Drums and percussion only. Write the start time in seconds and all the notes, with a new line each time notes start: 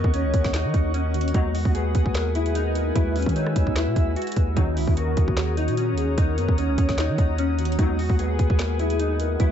0.04 kick
0.14 closed hi-hat
0.34 kick, closed hi-hat
0.44 kick, snare
0.54 snare, clap, closed hi-hat
0.74 kick, closed hi-hat
0.94 closed hi-hat
1.14 closed hi-hat
1.21 closed hi-hat
1.28 closed hi-hat
1.34 kick, closed hi-hat
1.55 open hi-hat
1.65 kick
1.75 closed hi-hat
1.95 kick, closed hi-hat
2.06 kick
2.15 snare, clap, closed hi-hat
2.35 closed hi-hat
2.46 closed hi-hat
2.55 closed hi-hat
2.75 closed hi-hat
2.96 kick, closed hi-hat
3.16 closed hi-hat, open hi-hat
3.22 kick, closed hi-hat
3.29 closed hi-hat
3.36 closed hi-hat
3.47 cross-stick
3.56 kick, closed hi-hat
3.67 kick
3.76 snare, clap, closed hi-hat
3.96 kick, closed hi-hat
4.16 closed hi-hat
4.22 closed hi-hat
4.27 closed hi-hat
4.32 closed hi-hat
4.36 kick, closed hi-hat
4.57 kick, closed hi-hat
4.77 open hi-hat
4.87 kick
4.97 closed hi-hat
5.17 kick, closed hi-hat
5.28 kick
5.37 snare, clap, closed hi-hat
5.57 closed hi-hat
5.68 closed hi-hat
5.77 closed hi-hat
5.98 closed hi-hat
6.18 kick, closed hi-hat
6.38 closed hi-hat
6.48 kick
6.58 closed hi-hat
6.78 kick, closed hi-hat
6.89 kick, snare
6.98 snare, clap, closed hi-hat
7.18 kick, closed hi-hat
7.38 closed hi-hat
7.59 closed hi-hat
7.65 closed hi-hat
7.72 closed hi-hat
7.79 kick, closed hi-hat
7.99 open hi-hat
8.10 kick
8.19 closed hi-hat
8.39 kick, closed hi-hat
8.50 kick
8.59 snare, clap, closed hi-hat
8.79 closed hi-hat
8.90 closed hi-hat
9.00 closed hi-hat
9.20 closed hi-hat
9.40 kick, closed hi-hat